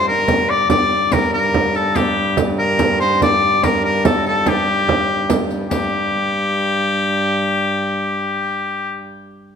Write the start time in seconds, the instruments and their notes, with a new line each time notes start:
Already playing: viola da gamba G2
0.08 shawm A#4
0.28 riq, frame drum
0.49 shawm D5
0.70 viola da gamba G2, shawm D5, riq, frame drum
1.12 shawm A#4, riq, frame drum
1.33 shawm A#4
1.54 frame drum
1.75 shawm A4, riq
1.95 shawm G4, riq, frame drum
2.17 frame drum
2.37 riq, frame drum
2.59 shawm A#4
2.79 riq, frame drum
3.00 shawm C5, riq
3.22 shawm D5, riq, frame drum
3.43 frame drum
3.63 shawm A#4, riq, frame drum
3.84 shawm A#4
4.05 shawm A4, riq, frame drum
4.26 shawm A4, riq
4.46 shawm G4, riq, frame drum
4.68 frame drum
4.89 frame drum
5.30 riq, frame drum
5.51 riq, frame drum
5.70 viola da gamba G2, shawm G4, riq, frame drum